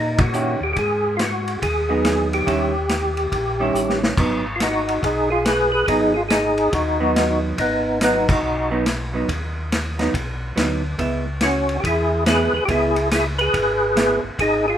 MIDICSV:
0, 0, Header, 1, 5, 480
1, 0, Start_track
1, 0, Tempo, 425834
1, 854, Time_signature, 4, 2, 24, 8
1, 16659, End_track
2, 0, Start_track
2, 0, Title_t, "Tonewheel organ"
2, 0, Program_c, 0, 16
2, 0, Note_on_c, 0, 63, 78
2, 225, Note_on_c, 0, 66, 79
2, 229, Note_off_c, 0, 63, 0
2, 663, Note_off_c, 0, 66, 0
2, 715, Note_on_c, 0, 67, 78
2, 807, Note_off_c, 0, 67, 0
2, 826, Note_on_c, 0, 67, 63
2, 868, Note_off_c, 0, 67, 0
2, 884, Note_on_c, 0, 68, 96
2, 1307, Note_off_c, 0, 68, 0
2, 1317, Note_on_c, 0, 65, 58
2, 1354, Note_off_c, 0, 65, 0
2, 1367, Note_on_c, 0, 66, 78
2, 1799, Note_off_c, 0, 66, 0
2, 1834, Note_on_c, 0, 68, 81
2, 2574, Note_off_c, 0, 68, 0
2, 2638, Note_on_c, 0, 67, 85
2, 4503, Note_off_c, 0, 67, 0
2, 5138, Note_on_c, 0, 65, 54
2, 5188, Note_off_c, 0, 65, 0
2, 5208, Note_on_c, 0, 66, 82
2, 5217, Note_on_c, 0, 63, 66
2, 5648, Note_off_c, 0, 63, 0
2, 5681, Note_on_c, 0, 68, 82
2, 5690, Note_off_c, 0, 66, 0
2, 5702, Note_on_c, 0, 63, 64
2, 5966, Note_off_c, 0, 68, 0
2, 5974, Note_off_c, 0, 63, 0
2, 5980, Note_on_c, 0, 68, 89
2, 5993, Note_on_c, 0, 65, 63
2, 6141, Note_off_c, 0, 65, 0
2, 6147, Note_on_c, 0, 71, 96
2, 6151, Note_off_c, 0, 68, 0
2, 6170, Note_on_c, 0, 68, 71
2, 6434, Note_off_c, 0, 71, 0
2, 6447, Note_on_c, 0, 71, 84
2, 6448, Note_off_c, 0, 68, 0
2, 6475, Note_on_c, 0, 68, 70
2, 6593, Note_off_c, 0, 68, 0
2, 6607, Note_on_c, 0, 68, 97
2, 6608, Note_off_c, 0, 71, 0
2, 6633, Note_on_c, 0, 63, 76
2, 6909, Note_off_c, 0, 68, 0
2, 6919, Note_off_c, 0, 63, 0
2, 6923, Note_on_c, 0, 68, 83
2, 6950, Note_on_c, 0, 65, 71
2, 7001, Note_off_c, 0, 68, 0
2, 7022, Note_off_c, 0, 65, 0
2, 7085, Note_on_c, 0, 68, 86
2, 7111, Note_on_c, 0, 63, 61
2, 7555, Note_off_c, 0, 63, 0
2, 7578, Note_on_c, 0, 66, 90
2, 7590, Note_off_c, 0, 68, 0
2, 7608, Note_on_c, 0, 63, 65
2, 8328, Note_off_c, 0, 66, 0
2, 8343, Note_off_c, 0, 63, 0
2, 8560, Note_on_c, 0, 63, 82
2, 8579, Note_on_c, 0, 59, 59
2, 9009, Note_off_c, 0, 59, 0
2, 9039, Note_off_c, 0, 63, 0
2, 9053, Note_on_c, 0, 63, 79
2, 9068, Note_on_c, 0, 59, 55
2, 9338, Note_off_c, 0, 59, 0
2, 9355, Note_on_c, 0, 66, 73
2, 9359, Note_off_c, 0, 63, 0
2, 9374, Note_on_c, 0, 63, 64
2, 9793, Note_off_c, 0, 66, 0
2, 9803, Note_off_c, 0, 63, 0
2, 12881, Note_on_c, 0, 66, 70
2, 12886, Note_on_c, 0, 61, 57
2, 13268, Note_off_c, 0, 61, 0
2, 13303, Note_on_c, 0, 67, 58
2, 13306, Note_off_c, 0, 66, 0
2, 13348, Note_off_c, 0, 67, 0
2, 13360, Note_on_c, 0, 68, 75
2, 13376, Note_on_c, 0, 64, 59
2, 13796, Note_off_c, 0, 68, 0
2, 13804, Note_off_c, 0, 64, 0
2, 13834, Note_on_c, 0, 71, 80
2, 13857, Note_on_c, 0, 68, 65
2, 14124, Note_off_c, 0, 71, 0
2, 14128, Note_off_c, 0, 68, 0
2, 14137, Note_on_c, 0, 71, 81
2, 14164, Note_on_c, 0, 68, 63
2, 14249, Note_off_c, 0, 71, 0
2, 14252, Note_off_c, 0, 68, 0
2, 14263, Note_on_c, 0, 67, 54
2, 14308, Note_off_c, 0, 67, 0
2, 14314, Note_on_c, 0, 68, 84
2, 14334, Note_on_c, 0, 64, 64
2, 14751, Note_off_c, 0, 68, 0
2, 14762, Note_off_c, 0, 64, 0
2, 14793, Note_on_c, 0, 68, 81
2, 14822, Note_on_c, 0, 64, 65
2, 14929, Note_off_c, 0, 68, 0
2, 14952, Note_off_c, 0, 64, 0
2, 15088, Note_on_c, 0, 71, 83
2, 15117, Note_on_c, 0, 68, 72
2, 15999, Note_off_c, 0, 71, 0
2, 16014, Note_off_c, 0, 68, 0
2, 16236, Note_on_c, 0, 68, 95
2, 16253, Note_on_c, 0, 63, 76
2, 16523, Note_off_c, 0, 63, 0
2, 16533, Note_off_c, 0, 68, 0
2, 16546, Note_on_c, 0, 68, 84
2, 16566, Note_on_c, 0, 65, 71
2, 16659, Note_off_c, 0, 65, 0
2, 16659, Note_off_c, 0, 68, 0
2, 16659, End_track
3, 0, Start_track
3, 0, Title_t, "Hollow-body jazz guitar"
3, 0, Program_c, 1, 26
3, 372, Note_on_c, 1, 51, 48
3, 381, Note_on_c, 1, 61, 48
3, 382, Note_on_c, 1, 64, 47
3, 383, Note_on_c, 1, 67, 47
3, 654, Note_off_c, 1, 51, 0
3, 658, Note_off_c, 1, 61, 0
3, 659, Note_off_c, 1, 64, 0
3, 659, Note_off_c, 1, 67, 0
3, 2131, Note_on_c, 1, 54, 66
3, 2140, Note_on_c, 1, 59, 68
3, 2142, Note_on_c, 1, 63, 73
3, 2746, Note_off_c, 1, 54, 0
3, 2750, Note_off_c, 1, 59, 0
3, 2751, Note_off_c, 1, 63, 0
3, 2777, Note_on_c, 1, 51, 58
3, 2779, Note_on_c, 1, 55, 54
3, 2786, Note_on_c, 1, 61, 52
3, 2788, Note_on_c, 1, 64, 61
3, 3059, Note_off_c, 1, 51, 0
3, 3060, Note_off_c, 1, 55, 0
3, 3063, Note_off_c, 1, 61, 0
3, 3064, Note_off_c, 1, 64, 0
3, 4053, Note_on_c, 1, 51, 65
3, 4060, Note_on_c, 1, 55, 63
3, 4067, Note_on_c, 1, 61, 63
3, 4071, Note_on_c, 1, 64, 69
3, 4669, Note_off_c, 1, 51, 0
3, 4672, Note_off_c, 1, 55, 0
3, 4675, Note_off_c, 1, 61, 0
3, 4677, Note_off_c, 1, 64, 0
3, 4711, Note_on_c, 1, 54, 56
3, 4721, Note_on_c, 1, 59, 58
3, 4726, Note_on_c, 1, 63, 60
3, 4988, Note_off_c, 1, 54, 0
3, 4993, Note_off_c, 1, 59, 0
3, 4995, Note_off_c, 1, 63, 0
3, 6630, Note_on_c, 1, 54, 49
3, 6634, Note_on_c, 1, 59, 52
3, 6641, Note_on_c, 1, 63, 58
3, 6908, Note_off_c, 1, 54, 0
3, 6910, Note_off_c, 1, 59, 0
3, 6914, Note_off_c, 1, 63, 0
3, 7892, Note_on_c, 1, 54, 64
3, 7896, Note_on_c, 1, 59, 68
3, 7904, Note_on_c, 1, 63, 67
3, 8509, Note_off_c, 1, 54, 0
3, 8511, Note_off_c, 1, 59, 0
3, 8515, Note_off_c, 1, 63, 0
3, 9028, Note_on_c, 1, 54, 53
3, 9035, Note_on_c, 1, 59, 56
3, 9041, Note_on_c, 1, 63, 57
3, 9307, Note_off_c, 1, 54, 0
3, 9310, Note_off_c, 1, 59, 0
3, 9313, Note_off_c, 1, 63, 0
3, 9812, Note_on_c, 1, 54, 60
3, 9822, Note_on_c, 1, 59, 68
3, 9828, Note_on_c, 1, 63, 70
3, 9965, Note_off_c, 1, 54, 0
3, 9970, Note_off_c, 1, 59, 0
3, 9973, Note_off_c, 1, 63, 0
3, 10296, Note_on_c, 1, 54, 60
3, 10311, Note_on_c, 1, 59, 59
3, 10320, Note_on_c, 1, 63, 62
3, 10447, Note_off_c, 1, 54, 0
3, 10454, Note_off_c, 1, 59, 0
3, 10459, Note_off_c, 1, 63, 0
3, 11258, Note_on_c, 1, 54, 54
3, 11263, Note_on_c, 1, 59, 60
3, 11270, Note_on_c, 1, 63, 65
3, 11407, Note_off_c, 1, 54, 0
3, 11410, Note_off_c, 1, 59, 0
3, 11413, Note_off_c, 1, 63, 0
3, 11901, Note_on_c, 1, 54, 45
3, 11905, Note_on_c, 1, 59, 52
3, 11917, Note_on_c, 1, 63, 61
3, 12182, Note_off_c, 1, 54, 0
3, 12184, Note_off_c, 1, 59, 0
3, 12190, Note_off_c, 1, 63, 0
3, 12383, Note_on_c, 1, 56, 54
3, 12388, Note_on_c, 1, 59, 50
3, 12398, Note_on_c, 1, 64, 60
3, 12662, Note_off_c, 1, 56, 0
3, 12665, Note_off_c, 1, 59, 0
3, 12670, Note_off_c, 1, 64, 0
3, 13826, Note_on_c, 1, 56, 54
3, 13830, Note_on_c, 1, 59, 60
3, 13836, Note_on_c, 1, 64, 66
3, 14102, Note_off_c, 1, 56, 0
3, 14104, Note_off_c, 1, 59, 0
3, 14107, Note_off_c, 1, 64, 0
3, 14300, Note_on_c, 1, 56, 55
3, 14303, Note_on_c, 1, 59, 56
3, 14311, Note_on_c, 1, 64, 56
3, 14578, Note_off_c, 1, 56, 0
3, 14580, Note_off_c, 1, 59, 0
3, 14584, Note_off_c, 1, 64, 0
3, 15732, Note_on_c, 1, 56, 47
3, 15739, Note_on_c, 1, 59, 59
3, 15746, Note_on_c, 1, 64, 57
3, 16012, Note_off_c, 1, 56, 0
3, 16016, Note_off_c, 1, 59, 0
3, 16019, Note_off_c, 1, 64, 0
3, 16659, End_track
4, 0, Start_track
4, 0, Title_t, "Tonewheel organ"
4, 0, Program_c, 2, 16
4, 0, Note_on_c, 2, 46, 78
4, 638, Note_off_c, 2, 46, 0
4, 683, Note_on_c, 2, 39, 61
4, 841, Note_off_c, 2, 39, 0
4, 856, Note_on_c, 2, 44, 76
4, 1772, Note_off_c, 2, 44, 0
4, 1821, Note_on_c, 2, 39, 78
4, 2736, Note_off_c, 2, 39, 0
4, 2779, Note_on_c, 2, 39, 70
4, 3696, Note_off_c, 2, 39, 0
4, 3737, Note_on_c, 2, 34, 81
4, 4186, Note_off_c, 2, 34, 0
4, 4208, Note_on_c, 2, 33, 67
4, 4661, Note_off_c, 2, 33, 0
4, 4701, Note_on_c, 2, 32, 71
4, 5618, Note_off_c, 2, 32, 0
4, 5664, Note_on_c, 2, 35, 85
4, 6580, Note_off_c, 2, 35, 0
4, 6621, Note_on_c, 2, 32, 74
4, 7538, Note_off_c, 2, 32, 0
4, 7583, Note_on_c, 2, 39, 80
4, 8499, Note_off_c, 2, 39, 0
4, 8542, Note_on_c, 2, 32, 75
4, 9458, Note_off_c, 2, 32, 0
4, 9501, Note_on_c, 2, 35, 88
4, 10417, Note_off_c, 2, 35, 0
4, 10464, Note_on_c, 2, 39, 68
4, 11378, Note_off_c, 2, 39, 0
4, 11426, Note_on_c, 2, 35, 82
4, 11870, Note_off_c, 2, 35, 0
4, 11902, Note_on_c, 2, 38, 70
4, 12347, Note_off_c, 2, 38, 0
4, 12382, Note_on_c, 2, 37, 67
4, 13294, Note_off_c, 2, 37, 0
4, 13342, Note_on_c, 2, 40, 88
4, 14085, Note_off_c, 2, 40, 0
4, 14122, Note_on_c, 2, 40, 34
4, 14207, Note_off_c, 2, 40, 0
4, 14297, Note_on_c, 2, 37, 79
4, 15209, Note_off_c, 2, 37, 0
4, 15259, Note_on_c, 2, 32, 84
4, 16001, Note_off_c, 2, 32, 0
4, 16044, Note_on_c, 2, 32, 37
4, 16128, Note_off_c, 2, 32, 0
4, 16213, Note_on_c, 2, 32, 76
4, 16659, Note_off_c, 2, 32, 0
4, 16659, End_track
5, 0, Start_track
5, 0, Title_t, "Drums"
5, 207, Note_on_c, 9, 51, 70
5, 209, Note_on_c, 9, 36, 80
5, 319, Note_off_c, 9, 51, 0
5, 322, Note_off_c, 9, 36, 0
5, 375, Note_on_c, 9, 44, 50
5, 487, Note_off_c, 9, 44, 0
5, 860, Note_on_c, 9, 51, 50
5, 863, Note_on_c, 9, 36, 33
5, 973, Note_off_c, 9, 51, 0
5, 976, Note_off_c, 9, 36, 0
5, 1343, Note_on_c, 9, 44, 56
5, 1343, Note_on_c, 9, 51, 62
5, 1345, Note_on_c, 9, 38, 65
5, 1455, Note_off_c, 9, 44, 0
5, 1455, Note_off_c, 9, 51, 0
5, 1458, Note_off_c, 9, 38, 0
5, 1662, Note_on_c, 9, 51, 43
5, 1775, Note_off_c, 9, 51, 0
5, 1828, Note_on_c, 9, 36, 35
5, 1830, Note_on_c, 9, 51, 58
5, 1941, Note_off_c, 9, 36, 0
5, 1943, Note_off_c, 9, 51, 0
5, 2306, Note_on_c, 9, 44, 52
5, 2306, Note_on_c, 9, 51, 67
5, 2308, Note_on_c, 9, 38, 62
5, 2418, Note_off_c, 9, 44, 0
5, 2418, Note_off_c, 9, 51, 0
5, 2421, Note_off_c, 9, 38, 0
5, 2627, Note_on_c, 9, 51, 46
5, 2740, Note_off_c, 9, 51, 0
5, 2786, Note_on_c, 9, 36, 33
5, 2792, Note_on_c, 9, 51, 53
5, 2899, Note_off_c, 9, 36, 0
5, 2904, Note_off_c, 9, 51, 0
5, 3260, Note_on_c, 9, 44, 53
5, 3260, Note_on_c, 9, 51, 59
5, 3262, Note_on_c, 9, 38, 62
5, 3373, Note_off_c, 9, 44, 0
5, 3373, Note_off_c, 9, 51, 0
5, 3375, Note_off_c, 9, 38, 0
5, 3573, Note_on_c, 9, 51, 39
5, 3685, Note_off_c, 9, 51, 0
5, 3742, Note_on_c, 9, 36, 35
5, 3745, Note_on_c, 9, 51, 52
5, 3855, Note_off_c, 9, 36, 0
5, 3858, Note_off_c, 9, 51, 0
5, 4224, Note_on_c, 9, 44, 60
5, 4337, Note_off_c, 9, 44, 0
5, 4389, Note_on_c, 9, 38, 49
5, 4501, Note_off_c, 9, 38, 0
5, 4546, Note_on_c, 9, 38, 78
5, 4659, Note_off_c, 9, 38, 0
5, 4706, Note_on_c, 9, 36, 71
5, 4710, Note_on_c, 9, 49, 72
5, 4819, Note_off_c, 9, 36, 0
5, 4823, Note_off_c, 9, 49, 0
5, 5186, Note_on_c, 9, 44, 56
5, 5186, Note_on_c, 9, 51, 73
5, 5189, Note_on_c, 9, 38, 63
5, 5299, Note_off_c, 9, 44, 0
5, 5299, Note_off_c, 9, 51, 0
5, 5301, Note_off_c, 9, 38, 0
5, 5506, Note_on_c, 9, 51, 47
5, 5618, Note_off_c, 9, 51, 0
5, 5669, Note_on_c, 9, 36, 35
5, 5677, Note_on_c, 9, 51, 63
5, 5781, Note_off_c, 9, 36, 0
5, 5790, Note_off_c, 9, 51, 0
5, 6148, Note_on_c, 9, 44, 60
5, 6148, Note_on_c, 9, 51, 67
5, 6150, Note_on_c, 9, 38, 68
5, 6261, Note_off_c, 9, 44, 0
5, 6261, Note_off_c, 9, 51, 0
5, 6263, Note_off_c, 9, 38, 0
5, 6626, Note_on_c, 9, 36, 31
5, 6627, Note_on_c, 9, 51, 62
5, 6739, Note_off_c, 9, 36, 0
5, 6740, Note_off_c, 9, 51, 0
5, 7103, Note_on_c, 9, 44, 65
5, 7103, Note_on_c, 9, 51, 63
5, 7106, Note_on_c, 9, 38, 70
5, 7216, Note_off_c, 9, 44, 0
5, 7216, Note_off_c, 9, 51, 0
5, 7218, Note_off_c, 9, 38, 0
5, 7411, Note_on_c, 9, 51, 43
5, 7524, Note_off_c, 9, 51, 0
5, 7582, Note_on_c, 9, 51, 64
5, 7584, Note_on_c, 9, 36, 37
5, 7695, Note_off_c, 9, 51, 0
5, 7697, Note_off_c, 9, 36, 0
5, 8072, Note_on_c, 9, 44, 58
5, 8072, Note_on_c, 9, 51, 69
5, 8074, Note_on_c, 9, 38, 69
5, 8184, Note_off_c, 9, 44, 0
5, 8184, Note_off_c, 9, 51, 0
5, 8187, Note_off_c, 9, 38, 0
5, 8545, Note_on_c, 9, 51, 64
5, 8547, Note_on_c, 9, 36, 33
5, 8658, Note_off_c, 9, 51, 0
5, 8660, Note_off_c, 9, 36, 0
5, 9027, Note_on_c, 9, 44, 66
5, 9027, Note_on_c, 9, 51, 70
5, 9029, Note_on_c, 9, 38, 64
5, 9140, Note_off_c, 9, 44, 0
5, 9140, Note_off_c, 9, 51, 0
5, 9142, Note_off_c, 9, 38, 0
5, 9342, Note_on_c, 9, 36, 78
5, 9349, Note_on_c, 9, 49, 66
5, 9455, Note_off_c, 9, 36, 0
5, 9462, Note_off_c, 9, 49, 0
5, 9987, Note_on_c, 9, 44, 54
5, 9987, Note_on_c, 9, 51, 72
5, 9989, Note_on_c, 9, 38, 65
5, 10099, Note_off_c, 9, 44, 0
5, 10099, Note_off_c, 9, 51, 0
5, 10102, Note_off_c, 9, 38, 0
5, 10469, Note_on_c, 9, 36, 32
5, 10471, Note_on_c, 9, 51, 61
5, 10582, Note_off_c, 9, 36, 0
5, 10584, Note_off_c, 9, 51, 0
5, 10958, Note_on_c, 9, 44, 62
5, 10958, Note_on_c, 9, 51, 70
5, 10960, Note_on_c, 9, 38, 68
5, 11070, Note_off_c, 9, 44, 0
5, 11070, Note_off_c, 9, 51, 0
5, 11072, Note_off_c, 9, 38, 0
5, 11261, Note_on_c, 9, 51, 44
5, 11263, Note_on_c, 9, 38, 50
5, 11374, Note_off_c, 9, 51, 0
5, 11376, Note_off_c, 9, 38, 0
5, 11431, Note_on_c, 9, 36, 34
5, 11436, Note_on_c, 9, 51, 62
5, 11544, Note_off_c, 9, 36, 0
5, 11549, Note_off_c, 9, 51, 0
5, 11917, Note_on_c, 9, 44, 53
5, 11917, Note_on_c, 9, 51, 69
5, 11920, Note_on_c, 9, 38, 68
5, 12030, Note_off_c, 9, 44, 0
5, 12030, Note_off_c, 9, 51, 0
5, 12032, Note_off_c, 9, 38, 0
5, 12385, Note_on_c, 9, 36, 33
5, 12385, Note_on_c, 9, 51, 54
5, 12498, Note_off_c, 9, 36, 0
5, 12498, Note_off_c, 9, 51, 0
5, 12856, Note_on_c, 9, 44, 51
5, 12856, Note_on_c, 9, 51, 72
5, 12858, Note_on_c, 9, 38, 69
5, 12969, Note_off_c, 9, 44, 0
5, 12969, Note_off_c, 9, 51, 0
5, 12971, Note_off_c, 9, 38, 0
5, 13174, Note_on_c, 9, 51, 42
5, 13287, Note_off_c, 9, 51, 0
5, 13344, Note_on_c, 9, 36, 34
5, 13352, Note_on_c, 9, 51, 62
5, 13457, Note_off_c, 9, 36, 0
5, 13465, Note_off_c, 9, 51, 0
5, 13820, Note_on_c, 9, 44, 65
5, 13820, Note_on_c, 9, 51, 69
5, 13823, Note_on_c, 9, 38, 74
5, 13933, Note_off_c, 9, 44, 0
5, 13933, Note_off_c, 9, 51, 0
5, 13935, Note_off_c, 9, 38, 0
5, 14298, Note_on_c, 9, 36, 35
5, 14298, Note_on_c, 9, 51, 62
5, 14410, Note_off_c, 9, 51, 0
5, 14411, Note_off_c, 9, 36, 0
5, 14610, Note_on_c, 9, 51, 47
5, 14722, Note_off_c, 9, 51, 0
5, 14781, Note_on_c, 9, 44, 56
5, 14781, Note_on_c, 9, 51, 75
5, 14783, Note_on_c, 9, 38, 63
5, 14893, Note_off_c, 9, 44, 0
5, 14893, Note_off_c, 9, 51, 0
5, 14896, Note_off_c, 9, 38, 0
5, 15090, Note_on_c, 9, 51, 44
5, 15203, Note_off_c, 9, 51, 0
5, 15260, Note_on_c, 9, 36, 34
5, 15261, Note_on_c, 9, 51, 67
5, 15373, Note_off_c, 9, 36, 0
5, 15374, Note_off_c, 9, 51, 0
5, 15743, Note_on_c, 9, 44, 54
5, 15743, Note_on_c, 9, 51, 68
5, 15745, Note_on_c, 9, 38, 73
5, 15856, Note_off_c, 9, 44, 0
5, 15856, Note_off_c, 9, 51, 0
5, 15858, Note_off_c, 9, 38, 0
5, 16219, Note_on_c, 9, 36, 36
5, 16221, Note_on_c, 9, 51, 61
5, 16331, Note_off_c, 9, 36, 0
5, 16334, Note_off_c, 9, 51, 0
5, 16659, End_track
0, 0, End_of_file